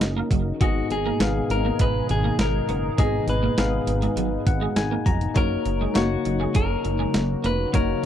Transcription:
0.00 0.22 F#1 loud
0.00 0.57 C#3 medium
0.00 0.57 F#3 medium
0.00 0.57 A#3 medium
0.00 0.63 C#4 medium
0.00 8.05 D#4 medium
0.00 0.27 F#4 medium
0.00 0.63 F#4 medium
0.00 0.57 A#4 medium
0.00 0.63 A#4 medium
0.00 0.62 D#5 medium
0.00 muted clean electric guitar stroke soft
0.00 snare medium
0.00 closed hi-hat medium
0.17 0.27 A#3 medium
0.31 0.52 F#1 medium
0.31 0.42 F#3 medium
0.31 kick medium
0.31 closed hi-hat medium
0.61 0.82 G#1 medium
0.61 1.46 G#2 medium
0.61 5.32 B2 medium
0.61 5.32 D#3 medium
0.61 0.71 G#3 medium
0.61 5.32 G#3 medium
0.61 0.98 B3 medium
0.61 0.98 D#4 medium
0.61 0.91 F#4 medium
0.61 0.98 G#4 medium
0.61 5.32 G#4 medium
0.61 0.98 D#5 medium
0.61 kick loud
0.61 closed hi-hat medium
0.90 1.12 G#1 medium
0.90 1.51 G#4 medium
0.90 muted clean electric guitar stroke soft
0.90 closed hi-hat medium
1.06 1.16 A#3 medium
1.20 1.41 G#1 loud
1.20 1.94 B3 medium
1.20 1.31 B3 medium
1.20 1.94 D#4 medium
1.20 1.94 G#4 medium
1.20 1.95 F5 medium
1.20 snare loud
1.20 closed hi-hat medium
1.50 1.71 G#1 medium
1.50 1.81 A#4 medium
1.50 muted clean electric guitar stroke soft
1.50 closed hi-hat medium
1.65 1.75 A#3 medium
1.79 2.01 G#1 loud
1.79 1.90 G#3 medium
1.79 2.10 B4 loud
1.79 kick medium
1.79 closed hi-hat medium
2.09 2.31 G#1 loud
2.09 2.41 G#4 medium
2.09 muted clean electric guitar stroke soft
2.09 closed hi-hat medium
2.24 2.35 A#3 medium
2.39 2.60 G#1 loud
2.39 2.99 A#4 medium
2.39 snare loud
2.39 closed hi-hat medium
2.69 2.90 F#1 medium
2.69 2.79 B3 medium
2.69 closed hi-hat medium
2.98 3.20 G#1 loud
2.98 3.84 G#2 medium
2.98 3.09 G#3 medium
2.98 3.35 B3 medium
2.98 3.35 D#4 medium
2.98 3.35 G#4 medium
2.98 3.29 G#4 medium
2.98 3.36 D#5 medium
2.98 kick loud
2.98 closed hi-hat medium
3.27 3.49 G#1 loud
3.27 5.03 B4 medium
3.27 muted clean electric guitar stroke soft
3.27 closed hi-hat medium
3.43 3.53 A#3 medium
3.58 3.79 G#1 medium
3.58 3.68 B3 medium
3.58 4.32 B3 medium
3.58 4.32 D#4 medium
3.58 4.32 G#4 medium
3.58 4.32 F5 medium
3.58 snare loud
3.58 closed hi-hat medium
3.87 4.08 G#1 medium
3.87 muted clean electric guitar stroke soft
3.87 closed hi-hat medium
4.02 4.13 G#3 medium
4.02 closed hi-hat soft
4.17 4.38 G#1 medium
4.17 4.28 F#3 medium
4.17 closed hi-hat medium
4.47 4.68 G#1 loud
4.47 4.75 F#5 medium
4.47 muted clean electric guitar stroke soft
4.47 kick medium
4.47 closed hi-hat medium
4.61 4.72 G#3 medium
4.76 4.98 G#1 loud
4.76 5.04 G#5 medium
4.76 muted clean electric guitar stroke soft
4.76 snare loud
4.76 closed hi-hat medium
4.91 5.02 A#3 medium
5.06 5.28 F1 medium
5.06 5.17 F#3 medium
5.06 5.34 A#5 medium
5.06 kick medium
5.06 closed hi-hat medium
5.21 closed hi-hat soft
5.34 5.57 F#1 loud
5.34 8.05 C#3 medium
5.34 5.46 F#3 medium
5.34 8.05 F#3 medium
5.34 5.72 A#3 medium
5.34 8.05 A#3 medium
5.34 5.72 D#4 medium
5.34 5.72 F#4 medium
5.34 8.05 F#4 medium
5.34 5.98 A#4 medium
5.34 5.73 C#5 medium
5.34 kick loud
5.34 closed hi-hat medium
5.65 5.87 F#1 medium
5.65 muted clean electric guitar stroke soft
5.65 closed hi-hat medium
5.81 5.91 G#3 medium
5.94 6.17 F#1 loud
5.94 6.69 A#3 medium
5.94 6.06 A#3 medium
5.94 6.69 D#4 medium
5.94 6.69 F#4 medium
5.94 6.52 F#4 medium
5.94 6.69 C#5 medium
5.94 snare loud
5.94 closed hi-hat medium
6.25 6.47 F#1 medium
6.25 muted clean electric guitar stroke soft
6.25 closed hi-hat medium
6.40 6.50 G#3 medium
6.54 6.76 F#1 loud
6.54 6.65 F#3 medium
6.54 7.40 A#4 medium
6.54 kick medium
6.54 closed hi-hat medium
6.84 7.06 F#1 loud
6.84 muted clean electric guitar stroke soft
6.84 closed hi-hat medium
6.99 7.10 G#3 medium
7.14 7.36 F#1 loud
7.14 snare loud
7.14 closed hi-hat medium
7.44 7.66 F1 medium
7.44 7.54 A#3 medium
7.44 7.75 B4 medium
7.44 closed hi-hat medium
7.73 7.95 F#1 loud
7.73 7.84 F#3 medium
7.73 8.05 A#3 medium
7.73 8.05 D#4 medium
7.73 8.05 F#4 medium
7.73 8.05 A#4 medium
7.73 8.05 C#5 medium
7.73 kick loud
7.73 closed hi-hat medium

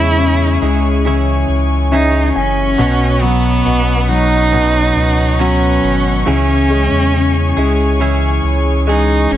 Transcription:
0.00 0.58 E2 loud
0.00 0.61 C#3 medium
0.00 1.04 C#3 medium
0.00 0.62 E3 medium
0.00 0.61 G#3 medium
0.00 0.64 C#4 medium
0.00 0.62 E4 medium
0.00 1.05 E4 loud
0.00 0.61 G#4 medium
0.00 2.75 G#4 medium
0.00 2.75 C#5 medium
0.00 2.76 G#5 medium
0.00 2.75 C#6 medium
0.18 1.88 C#4 medium
0.62 1.45 C#2 loud
0.62 2.32 G#3 medium
0.62 1.05 C#4 soft
0.62 1.06 E4 soft
0.62 1.05 G#4 medium
1.05 2.75 C#3 medium
1.05 1.91 E3 medium
1.05 1.93 C#4 medium
1.05 1.93 E4 medium
1.05 1.93 G#4 medium
1.48 2.31 C#2 loud
1.92 2.79 E3 medium
1.92 2.76 C#4 medium
1.92 2.80 C#4 medium
1.92 2.33 D#4 loud
1.92 2.80 G#4 medium
1.92 2.32 E5 medium
2.36 2.76 F#1 medium
2.36 3.24 C#4 loud
2.36 2.76 G#5 medium
2.78 3.62 B1 medium
2.78 3.64 B2 medium
2.78 4.52 B2 medium
2.78 4.51 F#3 medium
2.78 4.52 B3 medium
2.78 4.53 C#4 medium
2.78 4.53 F#4 medium
2.78 6.24 B4 medium
2.78 6.23 C#5 medium
2.78 6.23 F#5 medium
2.78 9.37 C#6 medium
3.22 4.07 F#3 medium
3.22 4.10 B3 loud
3.65 4.92 B1 loud
3.65 4.51 B2 medium
4.09 5.38 F#3 medium
4.09 5.41 D#4 loud
4.52 6.22 B2 medium
4.52 5.38 F#3 medium
4.52 5.39 B3 medium
4.52 5.41 C#4 medium
4.52 5.40 F#4 medium
4.96 5.79 C#2 medium
5.39 6.26 F#3 medium
5.39 6.24 F#3 medium
5.39 6.26 B3 medium
5.39 6.26 C#4 loud
5.39 6.27 C#4 medium
5.39 6.27 F#4 medium
5.83 6.24 G#1 medium
6.26 6.88 C#2 loud
6.26 7.57 C#3 medium
6.26 7.12 C#3 medium
6.26 7.57 E3 medium
6.26 7.59 C#4 medium
6.26 7.97 C#4 loud
6.26 7.57 E4 medium
6.26 9.37 G#4 medium
6.26 7.56 G#4 medium
6.26 9.37 C#5 medium
6.26 9.37 G#5 medium
6.70 7.56 G#3 medium
6.91 7.53 E2 medium
7.13 7.99 C#3 medium
7.57 8.40 C#2 loud
7.57 8.86 G#3 medium
7.57 8.00 C#4 soft
7.57 8.00 E4 medium
7.57 8.00 G#4 medium
8.00 9.37 C#3 medium
8.00 8.86 E3 medium
8.00 8.87 C#4 medium
8.00 8.88 E4 medium
8.00 8.88 G#4 medium
8.43 9.27 C#2 loud
8.87 9.37 E3 medium
8.87 9.37 G#3 medium
8.87 9.37 C#4 medium
8.87 9.33 D#4 medium
8.87 9.37 G#4 medium
9.31 9.37 F#1 medium
9.31 9.37 C#4 loud

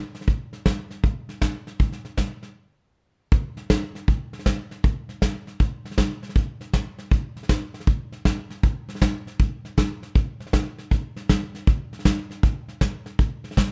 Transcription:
0.15 snare soft
0.21 snare soft
0.28 kick loud
0.28 snare soft
0.53 snare soft
0.66 kick medium
0.66 snare loud
0.66 hi-hat pedal medium
0.91 snare soft
1.04 kick loud
1.04 snare soft
1.29 snare soft
1.42 kick medium
1.42 snare loud
1.42 hi-hat pedal medium
1.67 snare soft
1.80 kick loud
1.80 snare soft
1.92 snare soft
2.05 snare soft
2.17 kick medium
2.17 snare medium
2.17 hi-hat pedal medium
2.43 snare soft
3.32 kick loud
3.32 snare soft
3.57 snare soft
3.70 kick medium
3.70 snare loud
3.70 hi-hat pedal medium
3.95 snare soft
4.08 kick loud
4.08 snare soft
4.33 snare soft
4.39 snare soft
4.46 kick medium
4.46 snare loud
4.46 hi-hat pedal medium
4.71 snare soft
4.84 kick loud
4.84 snare soft
5.09 snare soft
5.22 kick medium
5.22 snare loud
5.22 hi-hat pedal medium
5.47 snare soft
5.60 kick loud
5.60 snare soft
5.85 snare soft
5.91 snare soft
5.98 kick medium
5.98 snare loud
5.98 hi-hat pedal medium
6.23 snare soft
6.29 snare soft
6.36 kick loud
6.36 snare soft
6.61 snare soft
6.73 kick medium
6.73 snare loud
6.73 hi-hat pedal medium
6.98 snare soft
7.11 kick loud
7.11 snare soft
7.37 snare soft
7.43 snare soft
7.49 kick medium
7.49 snare loud
7.49 hi-hat pedal medium
7.74 snare soft
7.80 snare soft
7.87 kick loud
7.87 snare soft
8.12 snare soft
8.25 kick medium
8.25 snare loud
8.25 hi-hat pedal medium
8.50 snare soft
8.63 kick loud
8.63 snare soft
8.89 snare soft
8.95 snare soft
9.02 kick medium
9.02 snare loud
9.02 hi-hat pedal medium
9.27 snare soft
9.40 kick loud
9.40 snare soft
9.65 snare soft
9.78 kick medium
9.78 snare loud
9.78 hi-hat pedal medium
10.03 snare soft
10.15 kick loud
10.15 snare soft
10.40 snare soft
10.47 snare soft
10.53 kick medium
10.53 snare loud
10.53 hi-hat pedal medium
10.78 snare soft
10.91 kick loud
10.91 snare soft
11.16 snare soft
11.29 kick medium
11.29 snare loud
11.29 hi-hat pedal medium
11.55 snare soft
11.67 kick loud
11.67 snare soft
11.93 snare soft
11.99 snare soft
12.05 kick medium
12.05 snare loud
12.05 hi-hat pedal medium
12.31 snare soft
12.43 kick loud
12.43 snare soft
12.68 snare soft
12.81 kick medium
12.81 snare loud
12.81 hi-hat pedal medium
13.06 snare soft
13.19 kick loud
13.19 snare soft
13.44 snare soft
13.51 snare soft
13.57 kick medium
13.57 snare loud
13.57 hi-hat pedal medium

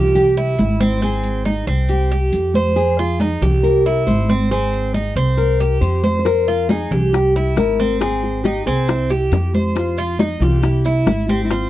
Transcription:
0.00 0.55 C2 medium
0.00 0.17 F4 medium
0.00 0.36 G4 medium
0.15 0.59 G4 loud
0.15 high conga soft
0.15 low conga medium
0.15 maracas medium
0.37 0.80 E4 medium
0.37 high conga soft
0.58 1.62 G#1 medium
0.58 1.00 E4 medium
0.58 high conga medium
0.58 maracas medium
0.80 1.01 C4 medium
0.80 high conga medium
0.80 maracas soft
1.01 1.45 C4 medium
1.01 1.89 G#4 loud
1.01 high conga soft
1.01 maracas medium
1.23 high conga soft
1.23 maracas medium
1.45 1.67 D#4 medium
1.45 high conga medium
1.45 maracas medium
1.67 2.29 C2 medium
1.67 2.10 C4 medium
1.67 high conga soft
1.67 maracas soft
1.88 2.73 G4 medium
1.88 high conga soft
1.88 maracas medium
2.11 2.54 G4 medium
2.11 high conga soft
2.32 3.36 F2 medium
2.32 high conga soft
2.32 maracas medium
2.54 2.98 C5 medium
2.54 high conga medium
2.54 maracas soft
2.76 3.63 G#4 loud
2.76 maracas medium
2.98 3.20 F4 medium
2.98 high conga soft
3.20 3.42 D#4 medium
3.20 high conga loud
3.20 maracas medium
3.41 4.03 C2 medium
3.41 3.85 G4 medium
3.41 high conga soft
3.41 low conga medium
3.41 maracas soft
3.63 4.06 A#4 loud
3.63 high conga soft
3.63 maracas medium
3.86 4.28 E4 medium
3.86 high conga soft
3.86 maracas medium
4.07 5.10 G#1 medium
4.07 4.51 C5 loud
4.07 high conga medium
4.07 maracas medium
4.29 4.50 C4 medium
4.29 high conga medium
4.29 maracas soft
4.51 4.94 C4 medium
4.51 5.37 G#4 loud
4.51 maracas medium
4.72 high conga soft
4.72 maracas medium
4.94 5.16 D#4 medium
4.94 high conga medium
4.94 maracas medium
5.16 5.78 C2 loud
5.16 5.59 C4 medium
5.16 high conga soft
5.16 maracas soft
5.38 5.79 A#4 loud
5.38 high conga soft
5.38 maracas medium
5.60 6.03 G4 medium
5.60 high conga soft
5.60 maracas medium
5.81 6.85 F2 medium
5.81 6.16 C5 loud
5.81 high conga soft
5.81 maracas medium
6.03 6.46 C5 medium
6.03 high conga medium
6.03 maracas soft
6.19 6.25 C5 medium
6.25 6.70 A#4 loud
6.25 high bongo medium
6.25 maracas medium
6.47 6.69 F4 medium
6.47 high conga soft
6.69 6.91 D#4 medium
6.69 7.11 G#4 medium
6.69 high bongo medium
6.69 high conga loud
6.69 maracas medium
6.91 7.53 C2 medium
6.91 7.34 G4 medium
6.91 high conga soft
6.91 low conga medium
6.91 maracas soft
7.13 7.57 G4 medium
7.13 high bongo medium
7.13 high conga soft
7.13 maracas medium
7.35 7.78 E4 medium
7.35 high conga soft
7.56 8.60 G#1 medium
7.56 8.00 A#4 loud
7.56 high bongo medium
7.56 low bongo medium
7.56 high conga medium
7.56 maracas medium
7.79 8.00 C4 medium
7.79 high conga medium
7.79 maracas soft
8.01 8.44 C4 medium
8.01 8.44 G#4 loud
8.01 high bongo medium
8.01 maracas medium
8.23 high bongo soft
8.23 high conga soft
8.44 8.66 D#4 medium
8.44 8.66 G4 medium
8.44 high bongo medium
8.44 high conga medium
8.44 maracas medium
8.66 9.28 C2 medium
8.66 9.09 C4 loud
8.66 8.89 G#4 medium
8.66 high conga soft
8.66 maracas soft
8.88 9.75 E4 medium
8.88 high bongo medium
8.88 high conga soft
8.88 maracas medium
9.10 9.53 G4 medium
9.10 high bongo soft
9.10 high conga soft
9.10 maracas medium
9.31 10.35 F2 medium
9.31 high bongo medium
9.31 low bongo medium
9.31 high conga soft
9.31 maracas medium
9.54 9.97 C5 medium
9.54 high bongo soft
9.54 high conga medium
9.54 maracas soft
9.75 10.16 F4 medium
9.75 high bongo medium
9.75 high conga soft
9.75 maracas medium
9.97 10.19 F4 medium
9.97 high conga soft
9.97 maracas medium
10.19 10.40 D#4 medium
10.19 10.41 D#4 medium
10.19 high bongo medium
10.19 high conga loud
10.19 maracas medium
10.40 11.02 C2 loud
10.40 10.63 F4 medium
10.40 10.84 G4 medium
10.40 high conga soft
10.40 low conga medium
10.40 maracas soft
10.62 11.06 E4 medium
10.62 high bongo medium
10.62 high conga soft
10.62 maracas medium
10.84 11.28 E4 medium
10.84 high conga soft
10.84 maracas medium
11.06 11.70 G#1 medium
11.06 11.29 E4 medium
11.06 high bongo medium
11.06 low bongo medium
11.06 high conga medium
11.06 maracas medium
11.28 11.50 C4 medium
11.28 11.44 G4 medium
11.28 high conga medium
11.28 maracas soft
11.45 11.51 E4 medium
11.51 11.70 C4 medium
11.51 11.70 F4 medium
11.51 high bongo medium
11.51 high conga soft
11.51 maracas medium

